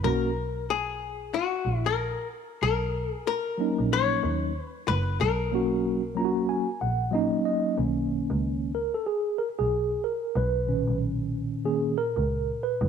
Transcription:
0.03 1.29 B1 loud
0.03 0.28 F#3 medium
0.03 0.29 A#3 medium
0.03 0.30 C#4 medium
0.03 0.30 F#4 medium
0.03 0.65 A#4 medium
0.70 1.34 G#4 loud
1.34 1.77 F#4 medium
1.65 2.07 A#1 medium
1.77 1.87 E4 medium
1.86 2.27 A#4 medium
2.62 3.04 B1 loud
2.62 3.13 A#4 medium
3.13 3.26 G#4 medium
3.27 3.93 A#4 loud
3.58 4.50 F#3 medium
3.58 4.51 A#3 medium
3.58 4.51 C#4 medium
3.58 4.52 D#4 medium
3.79 3.89 A#1 medium
3.93 4.63 C#5 loud
4.24 4.49 D#2 medium
4.63 4.88 B4 loud
4.88 5.14 F#1 medium
4.88 5.18 B4 loud
5.21 6.46 B1 loud
5.21 7.10 A#4 medium
5.52 6.00 F#3 medium
5.52 6.01 A#3 medium
5.52 6.02 C#4 medium
5.52 6.02 F#4 medium
6.15 6.64 F#3 medium
6.15 6.65 A#3 medium
6.15 6.65 C#4 medium
6.15 6.26 F4 medium
6.15 6.47 A#5 medium
6.25 6.69 F#4 medium
6.49 6.79 G#5 medium
6.81 7.23 A#1 medium
6.81 7.11 F#5 medium
7.11 7.77 F#3 medium
7.11 7.76 A#3 medium
7.11 7.77 C#4 medium
7.11 7.79 D#4 medium
7.11 7.43 D#5 medium
7.45 7.76 D#5 medium
7.77 8.19 B1 medium
7.77 8.71 D#3 medium
7.77 8.71 A#3 soft
7.77 8.71 C#4 medium
8.30 8.82 C#2 medium
8.75 8.95 A#4 medium
8.94 9.06 A4 medium
9.06 9.40 G#4 medium
9.39 9.48 A#4 medium
9.59 9.69 B1 medium
9.59 10.05 G#4 medium
10.04 10.37 A#4 medium
10.36 10.77 B1 loud
10.36 10.97 B4 loud
10.67 12.89 A#2 medium
10.67 11.64 D#3 medium
10.67 11.64 C#4 medium
10.88 11.39 B1 medium
11.65 11.94 D#3 soft
11.65 11.94 A#3 soft
11.65 11.95 C#4 medium
11.65 11.96 G#4 medium
11.98 12.64 A#4 medium
12.17 12.27 C#2 medium
12.63 12.89 B4 medium
12.82 12.89 F#1 loud

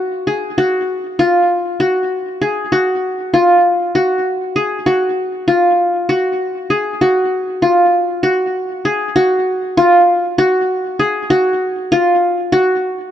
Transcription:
0.00 0.57 F#4 medium
0.27 1.48 G#4 medium
0.58 1.25 F#4 medium
1.19 1.86 F4 medium
1.80 2.72 F#4 medium
2.42 3.63 G#4 medium
2.72 3.40 F#4 medium
3.34 4.01 F4 medium
3.95 4.86 F#4 medium
4.56 5.77 G#4 medium
4.86 5.54 F#4 medium
5.48 6.15 F4 medium
6.09 7.01 F#4 medium
6.70 7.91 G#4 medium
7.01 7.68 F#4 medium
7.62 8.29 F4 medium
8.23 9.15 F#4 medium
8.85 10.06 G#4 medium
9.16 9.83 F#4 medium
9.77 10.44 F4 medium
10.38 11.30 F#4 medium
10.99 12.21 G#4 medium
11.30 11.98 F#4 medium
11.92 12.58 F4 medium
12.52 13.11 F#4 medium

